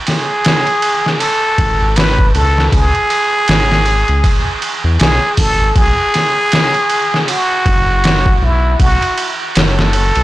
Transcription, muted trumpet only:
0.07 1.21 G#4 loud
1.19 1.98 A4 loud
1.97 2.34 B4 loud
2.35 2.75 A4 loud
2.74 4.75 G#4 loud
5.00 5.41 G#4 loud
5.39 5.79 A4 loud
5.77 7.31 G#4 loud
7.29 8.46 F#4 loud
8.44 8.81 E4 loud
8.81 9.28 F#4 loud
9.57 10.23 A4 loud

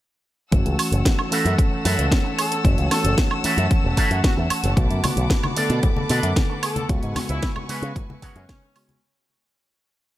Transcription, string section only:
0.52 4.73 C#5 medium
0.52 8.98 F#5 medium
0.52 6.85 A5 medium
0.52 4.73 E6 medium
4.77 6.87 B4 medium
4.77 6.87 D6 medium
6.89 9.00 B4 medium
6.89 9.00 G#5 medium
6.89 9.00 C#6 medium

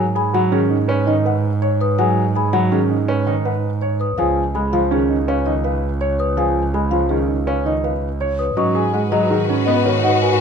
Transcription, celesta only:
0.16 0.40 B5 medium
1.81 2.05 D#6 medium
2.00 2.23 G#5 medium
2.36 2.60 B5 medium
4.01 4.24 D#6 medium
4.19 4.42 G#5 medium
4.55 4.79 B5 medium
6.20 6.43 D#6 medium
6.38 6.62 G#5 medium
6.74 6.98 B5 medium
8.39 8.63 D#6 medium
8.57 8.81 C#6 medium
8.75 8.99 G#5 medium
9.12 9.36 A#5 medium
10.04 10.28 F#5 medium
10.22 10.41 G#5 medium

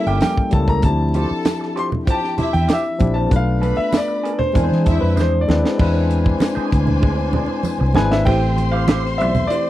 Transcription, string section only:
0.00 0.16 E4 medium
0.00 0.16 E5 loud
1.15 1.73 A4 medium
1.15 1.73 A5 medium
2.07 2.32 G4 medium
2.07 2.32 G5 medium
2.39 2.64 E4 medium
2.39 2.64 E5 loud
3.61 4.21 B4 medium
3.61 4.20 B5 medium
4.55 4.80 G#4 medium
4.55 4.80 G#5 medium
4.87 5.12 E4 loud
4.87 5.11 E5 loud
5.80 8.23 D4 medium
5.80 8.23 C5 medium
5.80 8.23 G#5 medium
8.27 9.70 C5 medium
8.27 9.70 C6 loud

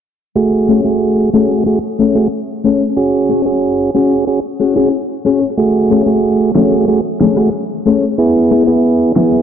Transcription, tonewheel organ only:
0.36 0.81 A3 medium
0.36 0.81 F#4 medium
0.36 0.81 G#4 medium
0.84 1.30 A3 medium
0.84 1.30 F#4 medium
0.84 1.30 G#4 medium
1.34 1.64 A3 medium
1.34 1.64 F#4 medium
1.34 1.64 G#4 medium
1.66 1.79 A3 medium
1.66 1.79 F#4 medium
1.66 1.79 G#4 medium
2.15 2.28 A3 medium
2.15 2.28 F#4 medium
2.15 2.28 G#4 medium
2.96 3.42 C#4 medium
2.96 3.42 F#4 medium
2.96 3.42 G#4 medium
3.45 3.91 C#4 medium
3.45 3.91 F#4 medium
3.45 3.91 G#4 medium
3.95 4.25 C#4 medium
3.95 4.25 F#4 medium
3.95 4.25 G#4 medium
4.27 4.40 C#4 medium
4.27 4.40 F#4 medium
4.27 4.40 G#4 medium
4.76 4.89 C#4 medium
4.76 4.89 F#4 medium
4.76 4.89 G#4 medium
5.57 6.03 A3 medium
5.57 6.03 F#4 medium
5.57 6.03 G#4 medium
6.06 6.51 A3 medium
6.06 6.52 F#4 medium
6.06 6.52 G#4 medium
6.55 6.85 A3 medium
6.55 6.85 F#4 medium
6.55 6.86 G#4 medium
6.88 7.01 A3 medium
6.88 7.01 F#4 medium
6.88 7.01 G#4 medium
7.37 7.49 A3 medium
7.37 7.50 F#4 medium
7.37 7.50 G#4 medium
8.18 8.63 B3 medium
8.18 8.63 E4 medium
8.18 8.64 G#4 loud
8.67 9.12 B3 medium
8.67 9.12 E4 medium
8.67 9.12 G#4 medium
9.16 9.42 B3 medium
9.16 9.42 E4 medium
9.16 9.42 G#4 medium

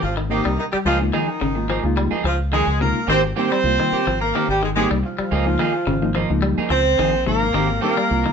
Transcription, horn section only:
0.02 0.15 F3 medium
0.02 0.15 F4 medium
0.30 0.56 D#3 medium
0.30 0.56 D#4 medium
0.59 0.65 D#3 medium
0.59 0.65 D#4 medium
0.73 0.78 G3 medium
0.73 0.78 G4 medium
0.85 0.98 F3 medium
0.85 0.98 F4 medium
1.14 1.94 D#3 medium
1.14 1.94 D#4 medium
2.27 2.39 F3 medium
2.27 2.39 F4 medium
2.53 2.79 G#3 medium
2.53 2.79 G#4 loud
2.81 3.07 A#3 medium
2.81 3.07 A#4 medium
3.09 3.22 C4 medium
3.09 3.22 C5 loud
3.37 4.16 C4 loud
3.37 4.16 C5 loud
4.21 4.46 A#3 medium
4.21 4.46 A#4 medium
4.49 4.63 G3 medium
4.49 4.63 G4 medium
4.64 4.69 G#3 medium
4.64 4.69 G#4 medium
4.76 4.88 G#3 medium
4.76 4.88 G#4 medium
5.05 6.40 F3 medium
5.05 6.40 F4 medium
6.70 7.22 C4 medium
6.70 7.22 C5 loud
7.27 7.78 A#3 medium
7.27 7.78 A#4 medium
7.82 8.33 A#3 medium
7.82 8.33 A#4 loud

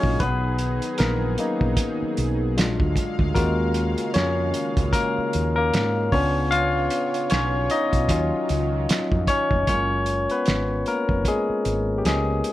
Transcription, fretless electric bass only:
0.04 0.19 A#1 medium
0.21 0.79 B1 loud
1.00 1.35 A#1 loud
1.62 1.77 A#1 medium
2.02 muted fretless electric bass stroke soft
2.18 2.58 B1 medium
2.58 2.78 A#1 loud
2.80 2.95 D2 loud
3.19 3.35 D2 medium
3.36 3.94 D#2 loud
4.16 4.51 F2 medium
4.77 4.92 C#2 medium
5.18 muted fretless electric bass stroke soft
5.35 5.70 D#2 medium
5.74 6.09 G#2 loud
6.13 6.88 C#2 loud
7.32 7.67 B1 medium
7.93 8.08 B1 medium
8.09 8.30 D#2 loud
8.34 muted fretless electric bass stroke soft
8.50 8.86 C#2 medium
9.12 9.27 F2 medium
9.51 9.66 F1 medium
9.68 10.26 F#1 medium
10.48 10.83 G#1 medium
11.09 11.24 F1 medium
11.49 muted fretless electric bass stroke soft
11.66 12.01 G#1 medium
12.05 12.41 C#2 medium

